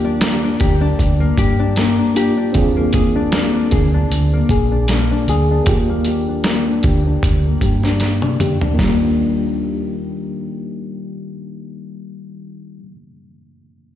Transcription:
Already playing: D#2 A#3 D4 F4 G4
0.05 D4
0.21 A#3, snare, closed hi-hat
0.43 D4
0.60 D2 G4, kick, closed hi-hat
0.81 D4
0.99 D2, kick, closed hi-hat
1.20 A#3
1.37 G2 G4, kick, closed hi-hat
1.59 D4
1.76 A#3, snare, closed hi-hat
1.99 D4
2.14 A#3 D4 F4 G4, closed hi-hat
2.37 D4
2.52 D#2 C4 D4 F4, kick, closed hi-hat
2.57 G#4
2.76 A#3
2.93 G#4, kick, closed hi-hat
3.15 D4
3.32 A#3, snare, closed hi-hat
3.55 D4
3.71 D2 G#4, kick, closed hi-hat
3.94 D4
4.10 D2, closed hi-hat
4.33 A#3
4.49 A#1 G#4, kick, closed hi-hat
4.72 D4
4.88 A#3, snare, closed hi-hat
5.11 D4
5.27 D2 G#4, closed hi-hat
5.51 D4
5.64 D#2 A#3 D4 F4, kick, closed hi-hat
5.69 G4
5.89 A#3
6.05 G4, closed hi-hat
6.28 D4
6.44 A#3, snare, closed hi-hat
6.68 D4
6.83 D2 G4, kick, closed hi-hat
7.07 D4
7.23 D2, kick, closed hi-hat
7.45 A#3
7.61 G2 G4, kick, closed hi-hat
7.83 D4, snare
8.00 A#3, snare, closed hi-hat
8.22 D4, high tom
8.40 G4, closed hi-hat, mid tom
8.61 D4, floor tom
8.73 D#3 A#3
8.77 D#2 G3 D4 F4, kick, snare
8.84 A#3 G4
8.89 D4
8.94 G4

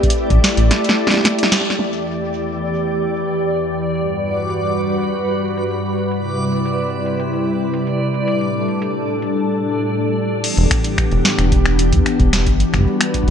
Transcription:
Already playing: A3 E4 G4 D5
0.03 kick, closed hi-hat
0.10 closed hi-hat
0.30 A1, kick, closed hi-hat
0.44 snare
0.57 A1, closed hi-hat
0.71 snare, closed hi-hat
0.84 closed hi-hat
0.89 snare
1.07 snare
1.10 snare, closed hi-hat
1.14 snare
1.17 snare
1.21 snare
1.24 snare, closed hi-hat
1.27 snare
1.31 snare
1.39 closed hi-hat
1.43 snare
1.52 snare
1.61 snare
1.65 closed hi-hat
1.70 snare, closed hi-hat
1.79 E2 E3 G4 D5, snare, closed hi-hat
1.86 closed hi-hat
2.20 closed hi-hat
2.33 closed hi-hat
2.74 closed hi-hat
2.87 closed hi-hat
3.01 closed hi-hat
3.28 closed hi-hat
3.41 closed hi-hat
3.55 closed hi-hat
3.82 closed hi-hat
3.95 G2 G3 F#4 B4, closed hi-hat
4.09 closed hi-hat
4.36 closed hi-hat
4.49 closed hi-hat
4.90 closed hi-hat
4.99 closed hi-hat
5.03 closed hi-hat
5.08 closed hi-hat
5.17 closed hi-hat
5.57 closed hi-hat
5.71 closed hi-hat
5.98 closed hi-hat
6.11 C3 G3 E4, closed hi-hat
6.52 closed hi-hat
6.66 closed hi-hat
7.06 closed hi-hat
7.20 closed hi-hat
7.33 closed hi-hat
7.74 closed hi-hat
7.87 closed hi-hat
8.14 closed hi-hat
8.28 A2 D4 A4, closed hi-hat
8.41 closed hi-hat
8.68 closed hi-hat
8.82 closed hi-hat
9.22 closed hi-hat
10.44 E3 B3 D4 G4, closed hi-hat, crash
10.57 E1, closed hi-hat
10.71 finger snap, kick, closed hi-hat
10.84 closed hi-hat
10.98 finger snap, kick, closed hi-hat
11.11 E1, closed hi-hat
11.25 snare
11.38 E1, finger snap, closed hi-hat
11.52 kick, closed hi-hat
11.66 finger snap, closed hi-hat
11.79 closed hi-hat
11.92 E2, kick, closed hi-hat
12.06 finger snap, closed hi-hat
12.20 E1, kick, closed hi-hat
12.33 finger snap, snare, closed hi-hat
12.47 G1, kick, closed hi-hat
12.60 G3 D4 F#4 B4, closed hi-hat
12.74 G1, finger snap, kick, closed hi-hat
12.76 kick
12.78 kick
12.80 kick
12.83 kick
12.85 kick
13.01 finger snap, closed hi-hat
13.14 kick, closed hi-hat
13.23 kick

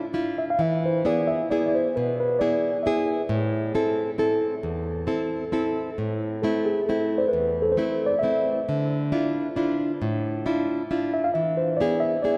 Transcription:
0.13 D4 E4 F4
0.38 E5
0.50 F5
0.59 E3 E5
0.86 C5
1.05 B3 E4 G#4 D5
1.28 E5
1.50 B3 E4 G#4 D5
1.68 D5
1.75 C5
1.96 B2 B4
2.20 B4
2.39 B3 E4 G#4 D5
2.83 B3 E4 G#4 E5
3.29 A2
3.75 C4 E4 A4
4.18 C4 E4 A4
4.63 E2
5.07 C4 E4 A4
5.52 C4 E4 A4
5.98 A2
6.42 A3 C4 E4 A4
6.66 G#4
6.86 A3 C4 E4 A4
7.18 C5 D5
7.28 B4
7.33 E2
7.62 A4
7.72 C5
7.77 A3 C4 E4
8.06 D5
8.19 A3 E5
8.23 C4 E4
8.69 D3
9.12 D4 E4 F4
9.56 D4 E4 F4
10.02 A2
10.46 D4 E4 F4
10.91 D4 E4 F4
11.14 E5
11.24 F5
11.34 E3 E5
11.57 C5
11.77 B3 E4 D5
11.81 G#4
12.00 E5
12.22 B3 E4 G#4 D5

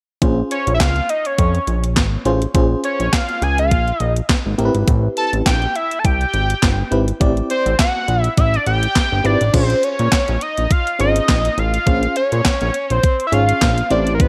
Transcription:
0.22 A#1 C#4 F4 G#4 C5, kick, closed hi-hat
0.51 C#5, closed hi-hat
0.67 A#1, closed hi-hat
0.74 E5
0.80 C#2 F5, kick, snare, clap, closed hi-hat
0.96 closed hi-hat
1.09 D#5, closed hi-hat
1.25 C#5, closed hi-hat
1.38 F2, kick, closed hi-hat
1.55 closed hi-hat
1.67 A#1, closed hi-hat
1.84 closed hi-hat
1.96 G#1, kick, snare, clap, closed hi-hat
2.25 A1 C#4 F4 G#4 C5, closed hi-hat
2.42 closed hi-hat
2.54 A#1 C#4 F4 G#4 C5, kick, closed hi-hat
2.84 C#5, closed hi-hat
3.00 A#1, closed hi-hat
3.13 F5, kick, snare, clap, closed hi-hat
3.29 closed hi-hat
3.42 C#2 G#5, closed hi-hat
3.58 F5, closed hi-hat
3.71 A#1, kick, closed hi-hat
3.88 closed hi-hat
4.00 A#1 D#5, closed hi-hat
4.16 closed hi-hat
4.29 kick, snare, clap, closed hi-hat
4.46 G#1
4.58 A1 C4 E4 G4 A#4, closed hi-hat
4.65 B4
4.75 G#1, closed hi-hat
4.87 A1, kick, closed hi-hat
5.17 A5, closed hi-hat
5.33 A1, closed hi-hat
5.46 A#1 G5, kick, snare, clap, closed hi-hat
5.62 closed hi-hat
5.75 E5, closed hi-hat
5.91 closed hi-hat
5.99 A5
6.05 C2 G5, kick, closed hi-hat
6.21 closed hi-hat
6.34 G#1, closed hi-hat
6.50 closed hi-hat
6.62 G1, kick, snare, clap, closed hi-hat
6.91 G#1 C4 E4 G4 B4, closed hi-hat
7.08 closed hi-hat
7.20 A1 C4 E4 G4 D5, kick, closed hi-hat
7.37 closed hi-hat
7.50 C5, closed hi-hat
7.66 A1, closed hi-hat
7.79 F#5, kick, snare, clap, closed hi-hat
8.08 A#1, closed hi-hat
8.22 E5, closed hi-hat
8.37 A1 E5, kick, closed hi-hat
8.54 closed hi-hat
8.66 A1 G5, closed hi-hat
8.83 closed hi-hat
8.96 kick, snare, clap, closed hi-hat
9.12 G1
9.24 G#1 C4 E4 G4 B4 D5, closed hi-hat
9.41 A1, closed hi-hat
9.53 A#1 C#4 F4 G#4 C5, kick, closed hi-hat, crash
9.70 closed hi-hat
9.83 C#5, closed hi-hat
9.99 A#2, closed hi-hat
10.12 kick, snare, clap, closed hi-hat
10.28 A#1, closed hi-hat
10.41 D#5, closed hi-hat
10.57 A#1, closed hi-hat
10.71 F5, kick, closed hi-hat
10.87 closed hi-hat
10.99 G#1 C#4 F4 G#4 C5 D#5, closed hi-hat
11.16 closed hi-hat
11.29 A#1, kick, snare, clap, closed hi-hat
11.45 closed hi-hat
11.58 A1 F5, closed hi-hat
11.74 closed hi-hat
11.86 A#1 C#4 F4 G#4 C5, kick, closed hi-hat
12.03 closed hi-hat
12.16 C#5, closed hi-hat
12.32 A#2, closed hi-hat
12.45 kick, snare, clap, closed hi-hat
12.61 A#1, closed hi-hat
12.74 closed hi-hat
12.90 A#1 C5, closed hi-hat
13.03 kick, closed hi-hat
13.20 closed hi-hat
13.27 E5
13.32 G#1 C#4 F4 G#4 C#5 F5, closed hi-hat
13.49 closed hi-hat
13.61 A#1, kick, snare, clap, closed hi-hat
13.78 closed hi-hat
13.90 A1 C4 E4 G4 C5 D5, closed hi-hat
14.07 closed hi-hat
14.15 A#4
14.20 B4, kick, closed hi-hat

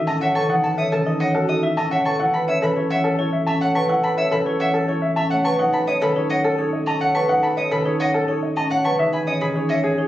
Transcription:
Already playing: D#3 E3 C#4 E4 A4 E5
0.07 C#4 D#5 A5
0.21 F#3 C#5 E5 F#5
0.35 E3 A4 A5 C#6
0.50 E3 D#4 F#5
0.64 A4 A5
0.78 C#4 C#5 E5 D#6
0.92 D#3 A4 A5
1.06 D#4 D#5
1.20 C#5 D#5 F#5
1.35 F#4 A4
1.49 D#4 D#5 D#6
1.63 E4 E5
1.77 C#4 D#5 A5
1.91 F#3 C#5 E5 F#5
2.05 E3 A4 A5 C#6
2.20 F#3 E4 A4 F#5
2.34 B4 A5 B5
2.48 C#4 C#5 E5 E6
2.62 E3 A4 B4 B5
2.76 E4 C#5
2.90 C#5 E5 F#5
3.04 A4
3.19 E4 C#5
3.33 E5
3.47 C#4 E5 A5
3.61 A3 C#5 F#5
3.75 F#3 B4 A5 C#6
3.89 F#3 E4 F#5
4.03 B4 A5 B5
4.18 C#4 C#5 E5 E6
4.31 E3 A4 B4 B5
4.46 E4 C#5
4.60 C#5 E5 F#5
4.74 A4
4.88 E4 C#5
5.02 E5
5.16 C#4 E5 A5
5.30 A3 C#5 F#5
5.44 F#3 B4 A5 C#6
5.59 F#3 D#4 A4 F#5
5.73 B4 A5 B5
5.87 C#4 C#5 D#5 D#6
6.01 D#3 A4 B4 B5
6.16 D#4 C#5
6.30 C#5 D#5 F#5
6.44 A4
6.59 D#4 C#5
6.73 D#5
6.86 C#4 D#5 A5
7.01 A3 C#5 F#5
7.15 F#3 B4 A5 C#6
7.29 F#3 D#4 F#5
7.43 B4 A5 B5
7.57 C#4 C#5 D#5 D#6
7.71 D#3 A4 B4 B5
7.86 D#4 C#5
8.00 C#5 D#5 F#5
8.14 A4
8.28 D#4 C#5
8.43 D#5
8.56 C#4 D#5 A5
8.70 A3 C#5 F#5
8.85 F#3 B4 A5 C#6
8.99 E3 D#4 G#4 E5
9.13 B4 G#5 B5
9.27 C#4 C#5 D#5 D#6
9.41 D#3 G#4 B5
9.55 D#4 C#5
9.69 C#5 D#5 E5
9.84 G#4
9.98 D#4 C#5

